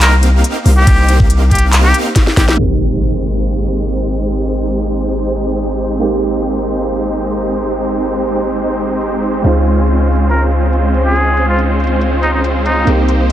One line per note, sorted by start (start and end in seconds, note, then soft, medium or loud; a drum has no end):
0.00 0.43 C2 loud
0.00 0.85 A#3 medium
0.00 0.85 C4 medium
0.00 0.85 D#4 medium
0.00 0.85 G4 medium
0.00 0.15 A#4 medium
0.00 0.85 F5 medium
0.00 clap loud
0.00 closed hi-hat medium
0.00 ride soft
0.23 closed hi-hat medium
0.44 closed hi-hat medium
0.66 0.86 C2 medium
0.66 open hi-hat loud
0.77 1.18 G4 loud
0.87 1.93 C2 loud
0.87 kick loud
0.87 closed hi-hat medium
0.87 ride soft
1.09 closed hi-hat medium
1.20 1.92 A#3 medium
1.20 1.92 C4 medium
1.20 1.92 D#4 medium
1.20 1.92 G4 medium
1.20 1.92 F5 medium
1.20 kick loud
1.30 closed hi-hat medium
1.51 1.65 G4 medium
1.51 kick medium
1.51 closed hi-hat medium
1.55 closed hi-hat medium
1.59 closed hi-hat medium
1.73 clap loud
1.73 closed hi-hat medium
1.73 ride soft
1.84 1.96 G4 loud
1.94 2.56 A#3 medium
1.94 2.56 C4 medium
1.94 2.56 D#4 medium
1.94 2.56 G4 medium
1.94 2.56 F5 loud
1.94 closed hi-hat medium
2.16 kick loud
2.16 snare medium
2.16 closed hi-hat medium
2.27 snare medium
2.37 2.57 A#1 medium
2.37 2.44 G4 medium
2.37 kick medium
2.37 snare medium
2.37 open hi-hat loud
2.48 2.55 G4 medium
2.48 snare medium
2.57 9.42 G#1 medium
2.57 5.99 G#3 medium
2.57 5.98 A#3 medium
2.57 5.99 C4 medium
2.57 5.99 D#4 medium
2.57 5.99 G4 medium
2.57 5.99 C5 medium
2.57 impact medium
2.61 6.00 G4 medium
3.87 closed hi-hat medium
4.30 closed hi-hat medium
4.51 closed hi-hat medium
4.73 closed hi-hat medium
4.94 closed hi-hat soft
4.98 closed hi-hat medium
5.01 closed hi-hat medium
5.16 closed hi-hat medium
5.37 closed hi-hat medium
5.59 closed hi-hat medium
5.80 closed hi-hat medium
5.99 9.42 G#3 medium
5.99 9.41 A#3 medium
5.99 9.42 C4 medium
5.99 9.42 D#4 medium
5.99 9.42 G4 medium
5.99 9.42 C5 medium
5.99 closed hi-hat medium
6.03 9.43 G4 medium
6.23 closed hi-hat medium
6.44 closed hi-hat medium
6.66 closed hi-hat soft
6.70 closed hi-hat medium
6.73 closed hi-hat medium
6.87 closed hi-hat medium
7.09 closed hi-hat medium
7.30 closed hi-hat medium
7.51 closed hi-hat medium
7.73 closed hi-hat medium
7.94 closed hi-hat medium
8.16 closed hi-hat medium
8.37 closed hi-hat soft
8.41 closed hi-hat medium
8.44 closed hi-hat medium
8.59 closed hi-hat medium
8.80 closed hi-hat medium
9.01 closed hi-hat medium
9.23 closed hi-hat medium
9.42 12.85 C#2 medium
9.42 12.84 G#3 medium
9.42 12.85 G#3 medium
9.42 12.85 C4 medium
9.42 12.85 C#4 medium
9.42 12.85 D#4 medium
9.42 12.85 F4 medium
9.42 12.84 C5 medium
9.42 12.85 C5 medium
9.42 closed hi-hat medium
9.46 12.86 F4 medium
9.66 closed hi-hat medium
9.87 closed hi-hat medium
10.09 closed hi-hat soft
10.12 closed hi-hat medium
10.16 closed hi-hat medium
10.30 10.43 A#4 medium
10.30 closed hi-hat medium
10.51 closed hi-hat medium
10.73 closed hi-hat medium
10.94 closed hi-hat medium
11.06 11.46 G#4 medium
11.16 closed hi-hat medium
11.37 closed hi-hat medium
11.48 11.61 F4 medium
11.59 closed hi-hat medium
11.80 closed hi-hat soft
11.84 closed hi-hat medium
11.87 closed hi-hat medium
12.01 closed hi-hat medium
12.23 12.30 D#4 medium
12.23 closed hi-hat medium
12.34 12.41 D#4 medium
12.44 closed hi-hat medium
12.66 12.92 D#4 medium
12.66 closed hi-hat medium
12.85 13.32 C2 medium
12.85 13.32 A#3 medium
12.85 13.32 C4 medium
12.85 13.32 D#4 medium
12.85 13.32 G4 medium
12.85 13.32 C5 medium
12.85 closed hi-hat medium
12.89 13.32 G4 medium
13.09 closed hi-hat medium